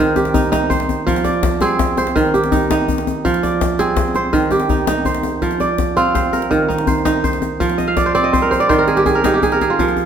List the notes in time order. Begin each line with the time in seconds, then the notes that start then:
Already playing: C4 G#4 C5
0.00 D#3
0.16 G4, djembe slap, djembe tone
0.25 djembe slap
0.34 D#4, djembe bass
0.52 D#4, djembe slap, djembe tone
0.70 C5, djembe bass
0.80 djembe slap
0.89 djembe slap, djembe tone
1.07 F3, djembe bass
1.16 djembe slap
1.24 D5, djembe tone
1.43 djembe slap, djembe bass
1.60 C4 G#4, djembe tone
1.79 djembe slap, djembe bass
1.97 C5, djembe tone
2.07 djembe slap
2.16 D#3, djembe bass
2.34 G4, djembe slap, djembe tone
2.44 djembe slap
2.52 D#4, djembe bass
2.71 D#4, djembe slap, djembe tone
2.88 djembe bass
2.98 djembe slap
3.07 djembe slap, djembe tone
3.25 F3, djembe bass
3.34 djembe slap
3.43 D5, djembe tone
3.52 djembe slap
3.61 djembe slap, djembe bass
3.79 C4 G#4, djembe slap, djembe tone
3.97 djembe slap, djembe bass
4.15 C5, djembe slap, djembe tone
4.33 D#3, djembe bass
4.51 G4, djembe tone
4.60 djembe slap
4.69 D#4, djembe slap, djembe bass
4.87 D#4, djembe slap, djembe tone
5.05 C5, djembe bass
5.14 djembe slap
5.23 djembe tone
5.42 F3, djembe bass
5.51 djembe slap
5.60 D5, djembe tone
5.78 djembe slap, djembe bass
5.97 C4 F4, djembe tone
6.15 C5, djembe slap, djembe bass
6.33 A#4, djembe tone
6.42 djembe slap
6.51 D#3, djembe bass
6.68 D#4, djembe slap, djembe tone
6.78 djembe slap
6.87 C5, djembe bass
7.05 D#4, djembe slap, djembe tone
7.24 C5, djembe bass
7.33 djembe slap
7.42 djembe slap, djembe tone
7.60 F3, djembe bass
7.70 djembe slap
7.78 D#5, djembe tone
7.88 F5
7.97 D5, djembe slap, djembe bass
8.06 C5
8.15 C4 D5, djembe tone
8.24 D#5
8.33 C5, djembe bass
8.42 A#4
8.51 C5, djembe tone
8.60 D5, djembe slap
8.69 D#3 C5, djembe bass
8.79 A#4
8.88 G#4, djembe slap, djembe tone
8.97 G4, djembe slap
9.06 G#4, djembe bass
9.15 A#4
9.24 D#4 G#4, djembe slap, djembe tone
9.34 G4
9.42 G#4, djembe bass
9.52 A#4, djembe slap
9.61 G#4, djembe slap, djembe tone
9.70 F4
9.79 F3, djembe bass
9.88 djembe slap
9.97 djembe tone